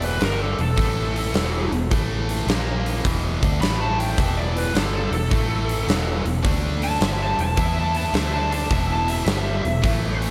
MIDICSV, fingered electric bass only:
0, 0, Header, 1, 2, 480
1, 0, Start_track
1, 0, Key_signature, 1, "minor"
1, 0, Tempo, 566038
1, 1620, Time_signature, 4, 2, 24, 8
1, 8739, End_track
2, 0, Start_track
2, 0, Title_t, "Fingered electric bass"
2, 0, Program_c, 0, 33
2, 0, Note_on_c, 0, 28, 91
2, 144, Note_off_c, 0, 28, 0
2, 181, Note_on_c, 0, 31, 86
2, 477, Note_off_c, 0, 31, 0
2, 499, Note_on_c, 0, 28, 74
2, 647, Note_off_c, 0, 28, 0
2, 661, Note_on_c, 0, 33, 91
2, 1106, Note_off_c, 0, 33, 0
2, 1134, Note_on_c, 0, 28, 93
2, 1434, Note_off_c, 0, 28, 0
2, 1458, Note_on_c, 0, 28, 80
2, 1608, Note_off_c, 0, 28, 0
2, 1624, Note_on_c, 0, 33, 84
2, 2069, Note_off_c, 0, 33, 0
2, 2092, Note_on_c, 0, 34, 86
2, 2543, Note_off_c, 0, 34, 0
2, 2585, Note_on_c, 0, 28, 83
2, 2881, Note_off_c, 0, 28, 0
2, 2909, Note_on_c, 0, 38, 97
2, 3055, Note_off_c, 0, 38, 0
2, 3059, Note_on_c, 0, 33, 91
2, 3507, Note_off_c, 0, 33, 0
2, 3549, Note_on_c, 0, 28, 84
2, 3992, Note_off_c, 0, 28, 0
2, 4027, Note_on_c, 0, 31, 91
2, 4322, Note_off_c, 0, 31, 0
2, 4335, Note_on_c, 0, 28, 76
2, 4488, Note_off_c, 0, 28, 0
2, 4509, Note_on_c, 0, 33, 85
2, 4953, Note_off_c, 0, 33, 0
2, 4981, Note_on_c, 0, 28, 94
2, 5278, Note_off_c, 0, 28, 0
2, 5300, Note_on_c, 0, 28, 76
2, 5451, Note_off_c, 0, 28, 0
2, 5464, Note_on_c, 0, 38, 91
2, 5910, Note_off_c, 0, 38, 0
2, 5942, Note_on_c, 0, 31, 90
2, 6239, Note_off_c, 0, 31, 0
2, 6263, Note_on_c, 0, 28, 78
2, 6411, Note_off_c, 0, 28, 0
2, 6425, Note_on_c, 0, 40, 93
2, 6869, Note_off_c, 0, 40, 0
2, 6897, Note_on_c, 0, 38, 99
2, 7344, Note_off_c, 0, 38, 0
2, 7386, Note_on_c, 0, 28, 90
2, 7829, Note_off_c, 0, 28, 0
2, 7855, Note_on_c, 0, 31, 92
2, 8153, Note_off_c, 0, 31, 0
2, 8181, Note_on_c, 0, 28, 76
2, 8329, Note_off_c, 0, 28, 0
2, 8343, Note_on_c, 0, 33, 88
2, 8739, Note_off_c, 0, 33, 0
2, 8739, End_track
0, 0, End_of_file